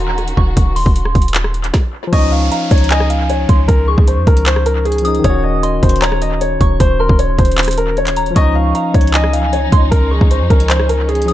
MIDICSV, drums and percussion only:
0, 0, Header, 1, 2, 480
1, 0, Start_track
1, 0, Key_signature, -5, "major"
1, 0, Tempo, 389610
1, 700, Time_signature, 4, 2, 24, 8
1, 13961, End_track
2, 0, Start_track
2, 0, Title_t, "Drums"
2, 220, Note_on_c, 9, 42, 42
2, 340, Note_off_c, 9, 42, 0
2, 340, Note_on_c, 9, 42, 72
2, 459, Note_on_c, 9, 36, 96
2, 463, Note_off_c, 9, 42, 0
2, 582, Note_off_c, 9, 36, 0
2, 699, Note_on_c, 9, 36, 108
2, 699, Note_on_c, 9, 42, 98
2, 822, Note_off_c, 9, 36, 0
2, 823, Note_off_c, 9, 42, 0
2, 939, Note_on_c, 9, 46, 78
2, 1059, Note_on_c, 9, 36, 105
2, 1062, Note_off_c, 9, 46, 0
2, 1179, Note_on_c, 9, 42, 77
2, 1182, Note_off_c, 9, 36, 0
2, 1299, Note_on_c, 9, 37, 68
2, 1302, Note_off_c, 9, 42, 0
2, 1419, Note_on_c, 9, 36, 102
2, 1419, Note_on_c, 9, 42, 52
2, 1422, Note_off_c, 9, 37, 0
2, 1499, Note_off_c, 9, 42, 0
2, 1499, Note_on_c, 9, 42, 69
2, 1542, Note_off_c, 9, 36, 0
2, 1579, Note_off_c, 9, 42, 0
2, 1579, Note_on_c, 9, 42, 85
2, 1657, Note_on_c, 9, 39, 122
2, 1658, Note_off_c, 9, 42, 0
2, 1658, Note_on_c, 9, 42, 88
2, 1779, Note_on_c, 9, 37, 86
2, 1780, Note_off_c, 9, 39, 0
2, 1781, Note_off_c, 9, 42, 0
2, 1899, Note_on_c, 9, 42, 47
2, 1902, Note_off_c, 9, 37, 0
2, 2020, Note_off_c, 9, 42, 0
2, 2020, Note_on_c, 9, 42, 76
2, 2139, Note_on_c, 9, 36, 111
2, 2139, Note_on_c, 9, 38, 88
2, 2143, Note_off_c, 9, 42, 0
2, 2263, Note_off_c, 9, 36, 0
2, 2263, Note_off_c, 9, 38, 0
2, 2620, Note_on_c, 9, 36, 117
2, 2620, Note_on_c, 9, 42, 103
2, 2743, Note_off_c, 9, 36, 0
2, 2743, Note_off_c, 9, 42, 0
2, 3100, Note_on_c, 9, 42, 79
2, 3223, Note_off_c, 9, 42, 0
2, 3340, Note_on_c, 9, 36, 102
2, 3340, Note_on_c, 9, 42, 74
2, 3420, Note_off_c, 9, 42, 0
2, 3420, Note_on_c, 9, 42, 74
2, 3463, Note_off_c, 9, 36, 0
2, 3500, Note_off_c, 9, 42, 0
2, 3500, Note_on_c, 9, 42, 75
2, 3579, Note_on_c, 9, 39, 121
2, 3580, Note_off_c, 9, 42, 0
2, 3580, Note_on_c, 9, 42, 79
2, 3700, Note_on_c, 9, 37, 93
2, 3702, Note_off_c, 9, 39, 0
2, 3703, Note_off_c, 9, 42, 0
2, 3820, Note_on_c, 9, 42, 83
2, 3823, Note_off_c, 9, 37, 0
2, 3943, Note_off_c, 9, 42, 0
2, 4060, Note_on_c, 9, 42, 72
2, 4183, Note_off_c, 9, 42, 0
2, 4300, Note_on_c, 9, 36, 97
2, 4300, Note_on_c, 9, 42, 66
2, 4423, Note_off_c, 9, 36, 0
2, 4423, Note_off_c, 9, 42, 0
2, 4540, Note_on_c, 9, 42, 103
2, 4541, Note_on_c, 9, 36, 113
2, 4664, Note_off_c, 9, 36, 0
2, 4664, Note_off_c, 9, 42, 0
2, 4901, Note_on_c, 9, 36, 104
2, 5020, Note_on_c, 9, 42, 76
2, 5024, Note_off_c, 9, 36, 0
2, 5144, Note_off_c, 9, 42, 0
2, 5261, Note_on_c, 9, 36, 103
2, 5261, Note_on_c, 9, 42, 54
2, 5381, Note_off_c, 9, 42, 0
2, 5381, Note_on_c, 9, 42, 85
2, 5384, Note_off_c, 9, 36, 0
2, 5499, Note_on_c, 9, 39, 127
2, 5500, Note_off_c, 9, 42, 0
2, 5500, Note_on_c, 9, 42, 82
2, 5620, Note_on_c, 9, 37, 90
2, 5622, Note_off_c, 9, 39, 0
2, 5624, Note_off_c, 9, 42, 0
2, 5741, Note_on_c, 9, 42, 80
2, 5743, Note_off_c, 9, 37, 0
2, 5864, Note_off_c, 9, 42, 0
2, 5981, Note_on_c, 9, 42, 43
2, 6060, Note_off_c, 9, 42, 0
2, 6060, Note_on_c, 9, 42, 58
2, 6140, Note_off_c, 9, 42, 0
2, 6140, Note_on_c, 9, 42, 76
2, 6220, Note_off_c, 9, 42, 0
2, 6220, Note_on_c, 9, 42, 67
2, 6340, Note_off_c, 9, 42, 0
2, 6340, Note_on_c, 9, 42, 37
2, 6460, Note_off_c, 9, 42, 0
2, 6460, Note_on_c, 9, 36, 116
2, 6460, Note_on_c, 9, 42, 101
2, 6583, Note_off_c, 9, 36, 0
2, 6583, Note_off_c, 9, 42, 0
2, 6940, Note_on_c, 9, 42, 79
2, 7063, Note_off_c, 9, 42, 0
2, 7179, Note_on_c, 9, 36, 107
2, 7179, Note_on_c, 9, 42, 73
2, 7259, Note_off_c, 9, 42, 0
2, 7259, Note_on_c, 9, 42, 74
2, 7303, Note_off_c, 9, 36, 0
2, 7340, Note_off_c, 9, 42, 0
2, 7340, Note_on_c, 9, 42, 70
2, 7418, Note_on_c, 9, 39, 125
2, 7419, Note_off_c, 9, 42, 0
2, 7419, Note_on_c, 9, 42, 80
2, 7539, Note_on_c, 9, 37, 92
2, 7542, Note_off_c, 9, 39, 0
2, 7543, Note_off_c, 9, 42, 0
2, 7659, Note_on_c, 9, 42, 85
2, 7662, Note_off_c, 9, 37, 0
2, 7782, Note_off_c, 9, 42, 0
2, 7899, Note_on_c, 9, 42, 73
2, 8022, Note_off_c, 9, 42, 0
2, 8139, Note_on_c, 9, 36, 100
2, 8139, Note_on_c, 9, 42, 67
2, 8262, Note_off_c, 9, 36, 0
2, 8262, Note_off_c, 9, 42, 0
2, 8379, Note_on_c, 9, 36, 113
2, 8379, Note_on_c, 9, 42, 104
2, 8502, Note_off_c, 9, 36, 0
2, 8502, Note_off_c, 9, 42, 0
2, 8739, Note_on_c, 9, 36, 107
2, 8858, Note_on_c, 9, 42, 76
2, 8862, Note_off_c, 9, 36, 0
2, 8981, Note_off_c, 9, 42, 0
2, 9098, Note_on_c, 9, 42, 53
2, 9099, Note_on_c, 9, 36, 102
2, 9178, Note_off_c, 9, 42, 0
2, 9178, Note_on_c, 9, 42, 59
2, 9222, Note_off_c, 9, 36, 0
2, 9258, Note_off_c, 9, 42, 0
2, 9258, Note_on_c, 9, 42, 67
2, 9337, Note_on_c, 9, 39, 125
2, 9338, Note_off_c, 9, 42, 0
2, 9338, Note_on_c, 9, 42, 74
2, 9399, Note_off_c, 9, 42, 0
2, 9399, Note_on_c, 9, 42, 61
2, 9418, Note_off_c, 9, 42, 0
2, 9418, Note_on_c, 9, 42, 84
2, 9459, Note_off_c, 9, 42, 0
2, 9459, Note_on_c, 9, 37, 90
2, 9459, Note_on_c, 9, 42, 70
2, 9460, Note_off_c, 9, 39, 0
2, 9498, Note_off_c, 9, 42, 0
2, 9498, Note_on_c, 9, 42, 89
2, 9519, Note_off_c, 9, 42, 0
2, 9519, Note_on_c, 9, 42, 80
2, 9579, Note_off_c, 9, 42, 0
2, 9579, Note_on_c, 9, 42, 76
2, 9582, Note_off_c, 9, 37, 0
2, 9702, Note_off_c, 9, 42, 0
2, 9819, Note_on_c, 9, 42, 43
2, 9939, Note_off_c, 9, 42, 0
2, 9939, Note_on_c, 9, 39, 64
2, 9939, Note_on_c, 9, 42, 75
2, 10058, Note_off_c, 9, 42, 0
2, 10058, Note_on_c, 9, 42, 67
2, 10062, Note_off_c, 9, 39, 0
2, 10179, Note_off_c, 9, 42, 0
2, 10179, Note_on_c, 9, 42, 38
2, 10299, Note_off_c, 9, 42, 0
2, 10299, Note_on_c, 9, 36, 118
2, 10299, Note_on_c, 9, 42, 102
2, 10422, Note_off_c, 9, 36, 0
2, 10422, Note_off_c, 9, 42, 0
2, 10779, Note_on_c, 9, 42, 79
2, 10902, Note_off_c, 9, 42, 0
2, 11019, Note_on_c, 9, 36, 105
2, 11020, Note_on_c, 9, 42, 73
2, 11099, Note_off_c, 9, 42, 0
2, 11099, Note_on_c, 9, 42, 73
2, 11142, Note_off_c, 9, 36, 0
2, 11179, Note_off_c, 9, 42, 0
2, 11179, Note_on_c, 9, 42, 73
2, 11258, Note_on_c, 9, 39, 124
2, 11259, Note_off_c, 9, 42, 0
2, 11259, Note_on_c, 9, 42, 83
2, 11379, Note_on_c, 9, 37, 89
2, 11381, Note_off_c, 9, 39, 0
2, 11382, Note_off_c, 9, 42, 0
2, 11500, Note_on_c, 9, 42, 85
2, 11503, Note_off_c, 9, 37, 0
2, 11623, Note_off_c, 9, 42, 0
2, 11739, Note_on_c, 9, 42, 71
2, 11863, Note_off_c, 9, 42, 0
2, 11979, Note_on_c, 9, 36, 99
2, 11979, Note_on_c, 9, 42, 69
2, 12102, Note_off_c, 9, 36, 0
2, 12103, Note_off_c, 9, 42, 0
2, 12219, Note_on_c, 9, 36, 118
2, 12219, Note_on_c, 9, 42, 103
2, 12343, Note_off_c, 9, 36, 0
2, 12343, Note_off_c, 9, 42, 0
2, 12580, Note_on_c, 9, 36, 103
2, 12700, Note_on_c, 9, 42, 78
2, 12703, Note_off_c, 9, 36, 0
2, 12823, Note_off_c, 9, 42, 0
2, 12940, Note_on_c, 9, 36, 102
2, 12940, Note_on_c, 9, 42, 54
2, 13060, Note_off_c, 9, 42, 0
2, 13060, Note_on_c, 9, 42, 86
2, 13063, Note_off_c, 9, 36, 0
2, 13179, Note_on_c, 9, 39, 127
2, 13180, Note_off_c, 9, 42, 0
2, 13180, Note_on_c, 9, 42, 81
2, 13300, Note_on_c, 9, 37, 92
2, 13302, Note_off_c, 9, 39, 0
2, 13304, Note_off_c, 9, 42, 0
2, 13420, Note_on_c, 9, 42, 76
2, 13423, Note_off_c, 9, 37, 0
2, 13543, Note_off_c, 9, 42, 0
2, 13661, Note_on_c, 9, 42, 43
2, 13740, Note_off_c, 9, 42, 0
2, 13740, Note_on_c, 9, 42, 56
2, 13820, Note_off_c, 9, 42, 0
2, 13820, Note_on_c, 9, 42, 73
2, 13900, Note_off_c, 9, 42, 0
2, 13900, Note_on_c, 9, 42, 68
2, 13961, Note_off_c, 9, 42, 0
2, 13961, End_track
0, 0, End_of_file